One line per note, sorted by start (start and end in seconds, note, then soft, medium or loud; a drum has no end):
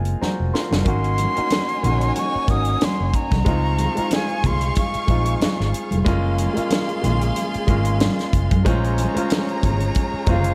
0.00 0.14 F#1 medium
0.00 0.88 G#3 medium
0.00 0.84 A#3 medium
0.00 0.89 C4 medium
0.00 0.54 F4 medium
0.00 0.88 G#4 soft
0.00 0.88 D#5 medium
0.00 0.88 F5 medium
0.00 0.19 G#5 medium
0.05 closed hi-hat soft
0.21 0.53 F#4 soft
0.21 0.52 C5 medium
0.21 0.52 A#5 medium
0.21 muted fingered electric bass stroke soft
0.21 snare medium
0.21 high conga medium
0.40 0.51 F1 medium
0.54 0.71 F4 medium
0.54 0.70 A#4 medium
0.54 0.84 C6 medium
0.54 snare medium
0.71 0.83 F#1 medium
0.71 0.84 C#4 soft
0.71 0.86 F#4 medium
0.71 snare medium
0.71 high conga medium
0.84 1.26 G#1 loud
0.84 1.16 A#3 medium
0.84 1.17 C#4 medium
0.84 3.42 D#4 medium
0.84 1.17 D#4 medium
0.84 1.18 F#4 medium
0.84 3.42 C#5 medium
0.84 3.42 G#5 medium
0.84 2.13 C6 loud
0.84 kick loud
0.84 closed hi-hat medium
0.84 muted conga soft
1.04 closed hi-hat soft
1.18 closed hi-hat medium
1.18 muted conga soft
1.35 1.66 A#3 medium
1.35 1.67 C#4 medium
1.35 1.68 D#4 medium
1.35 1.68 F#4 medium
1.35 muted fingered electric bass stroke soft
1.35 closed hi-hat soft
1.50 snare loud
1.50 closed hi-hat medium
1.50 high conga medium
1.69 closed hi-hat soft
1.82 2.10 A#1 medium
1.82 2.25 A#3 medium
1.82 2.25 C#4 medium
1.82 2.26 D#4 medium
1.82 2.27 F#4 medium
1.82 closed hi-hat medium
1.82 low conga medium
2.01 closed hi-hat soft
2.16 2.52 C#6 loud
2.16 closed hi-hat medium
2.16 muted conga soft
2.35 muted fingered electric bass stroke soft
2.47 2.74 G#1 medium
2.47 3.10 A#3 medium
2.47 3.11 C#4 medium
2.47 3.11 D#4 medium
2.47 3.12 F#4 medium
2.47 2.86 D#6 loud
2.47 kick medium
2.47 closed hi-hat medium
2.47 muted conga soft
2.65 closed hi-hat soft
2.81 3.17 C6 medium
2.81 muted fingered electric bass stroke soft
2.81 snare loud
2.81 closed hi-hat medium
2.81 high conga medium
3.00 3.12 F#1 medium
3.14 4.15 A#5 medium
3.14 kick medium
3.14 closed hi-hat medium
3.31 3.43 C2 medium
3.31 kick medium
3.31 snare soft
3.31 closed hi-hat soft
3.31 high conga medium
3.45 3.86 C#2 loud
3.45 3.77 G#3 medium
3.45 3.77 C4 medium
3.45 3.78 D#4 medium
3.45 3.78 F4 medium
3.45 6.03 G#4 medium
3.45 6.03 F5 medium
3.45 6.02 C#6 medium
3.45 kick loud
3.45 closed hi-hat medium
3.45 muted conga soft
3.78 closed hi-hat medium
3.78 muted conga medium
3.95 4.67 G#3 medium
3.95 4.68 C4 medium
3.95 4.69 D#4 medium
3.95 4.69 F4 medium
3.95 muted fingered electric bass stroke soft
3.95 closed hi-hat medium
4.11 4.48 G#5 medium
4.11 snare loud
4.11 closed hi-hat medium
4.11 high conga medium
4.29 closed hi-hat soft
4.44 4.69 C2 medium
4.44 4.78 C6 loud
4.44 kick medium
4.44 closed hi-hat medium
4.44 low conga medium
4.61 closed hi-hat soft
4.75 5.71 C#6 medium
4.75 kick medium
4.75 closed hi-hat medium
4.75 muted conga soft
4.94 muted fingered electric bass stroke soft
4.94 closed hi-hat soft
5.07 5.34 A#1 medium
5.07 5.70 G#3 medium
5.07 5.71 C4 medium
5.07 5.71 D#4 medium
5.07 5.72 F4 medium
5.07 kick medium
5.07 closed hi-hat medium
5.07 muted conga soft
5.25 closed hi-hat medium
5.41 muted fingered electric bass stroke soft
5.41 snare loud
5.41 closed hi-hat medium
5.41 high conga medium
5.60 5.71 G#1 medium
5.60 snare soft
5.74 closed hi-hat medium
5.91 6.04 F1 medium
5.91 closed hi-hat soft
5.91 high conga medium
6.05 6.46 F#1 loud
6.05 6.36 G#3 loud
6.05 6.37 A#3 medium
6.05 6.38 C#4 medium
6.05 6.38 F4 loud
6.05 8.62 G#4 medium
6.05 8.62 F5 medium
6.05 8.62 C6 medium
6.05 kick loud
6.05 closed hi-hat medium
6.05 muted conga soft
6.38 closed hi-hat medium
6.38 muted conga medium
6.54 6.86 G#3 medium
6.54 6.86 A#3 medium
6.54 6.87 C#4 medium
6.54 6.87 F4 medium
6.54 muted fingered electric bass stroke soft
6.54 closed hi-hat medium
6.70 snare loud
6.70 closed hi-hat medium
6.70 high conga medium
6.89 closed hi-hat soft
7.02 7.30 A#1 medium
7.02 7.44 G#3 medium
7.02 7.45 A#3 medium
7.02 7.45 C#4 medium
7.02 7.46 F4 medium
7.02 closed hi-hat medium
7.02 low conga medium
7.21 closed hi-hat soft
7.36 closed hi-hat medium
7.36 muted conga soft
7.54 muted fingered electric bass stroke soft
7.54 closed hi-hat soft
7.67 8.08 G#1 medium
7.67 8.30 G#3 medium
7.67 8.30 A#3 medium
7.67 8.31 C#4 medium
7.67 8.31 F4 medium
7.67 kick medium
7.67 closed hi-hat medium
7.85 closed hi-hat medium
8.00 snare loud
8.00 closed hi-hat medium
8.00 high conga medium
8.19 snare soft
8.19 closed hi-hat soft
8.33 8.47 F#1 medium
8.33 kick medium
8.33 closed hi-hat medium
8.51 8.63 F#2 medium
8.51 kick medium
8.51 closed hi-hat soft
8.51 high conga medium
8.65 9.05 A#1 loud
8.65 8.96 G#3 loud
8.65 8.97 C#4 medium
8.65 8.98 F4 loud
8.65 10.54 G#4 medium
8.65 8.97 C5 loud
8.65 10.54 C#5 medium
8.65 10.54 A#5 medium
8.65 kick loud
8.65 closed hi-hat medium
8.65 muted conga soft
8.84 closed hi-hat soft
8.98 closed hi-hat medium
8.98 muted conga soft
9.14 9.86 G#3 medium
9.14 9.88 C#4 medium
9.14 9.88 F4 loud
9.14 9.87 C5 medium
9.14 muted fingered electric bass stroke soft
9.14 closed hi-hat medium
9.30 snare loud
9.30 closed hi-hat medium
9.30 high conga medium
9.49 closed hi-hat soft
9.63 9.89 G#1 medium
9.63 kick medium
9.63 closed hi-hat medium
9.63 low conga medium
9.80 closed hi-hat soft
9.95 kick medium
9.95 closed hi-hat medium
9.95 muted conga soft
10.14 muted fingered electric bass stroke soft
10.26 10.53 F#1 medium
10.26 10.54 G#3 medium
10.26 10.54 C#4 medium
10.26 10.54 F4 loud
10.26 10.54 C5 medium
10.26 kick medium
10.26 closed hi-hat medium
10.26 muted conga soft
10.26 low conga medium
10.31 10.54 F5 medium
10.44 closed hi-hat medium